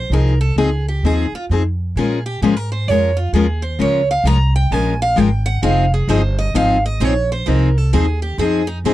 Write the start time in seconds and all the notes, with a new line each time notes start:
Already playing: C5
0.10 C2 F3 C4 D#4 G#4 A#4
0.41 A4
0.56 C#2 F3 C4 D#4 G#4
0.89 G4
1.03 D#2 F3 C4 D#4 G#4
1.32 F4, muted upright bass stroke
1.49 F2 F3 C4 D#4 G#4
1.96 A#2 F3 G#3 C#4 F4 G#4 A#4
2.26 G4
2.42 G#2 F3 G#3 C#4 F4 G#4 A#4
2.57 A#4
2.72 C5
2.88 F2 F3 G#3 C#4 F4 A#4 C#5
3.17 F4
3.33 D#2 F3 G#3 C#4 F4 G#4 A#4
3.62 C5
3.79 C#2 F3 G#3 C#4 F4 A#4 C#5
4.11 F5
4.24 C2 F3 G#3 C#4 F4 A#4 A#5
4.56 G5
4.71 A#1 F3 G#3 C#4 F4 A#4 G#5
5.02 F5
5.16 G#1 F3 G#3 C#4 F4 A#4 G5
5.46 F#5
5.62 F1 F3 C4 D#4 G#4 F5
5.94 G#4
6.07 G1 F3 C4 D#4 G#4 C5
6.39 D#5
6.54 G#1 F3 C4 D#4 G#4 F5
6.86 D#5
7.00 A#1 F3 C4 D#4 G#4
7.05 C#5
7.32 C5
7.47 C2 F3 C4 D#4 G#4 A#4
7.78 A4
7.93 D#2 F3 C4 D#4 G#4
8.22 G4
8.38 F2 F3 C4 D#4 G#4
8.67 D#4
8.84 G#2 F3 C4 D#4 G#4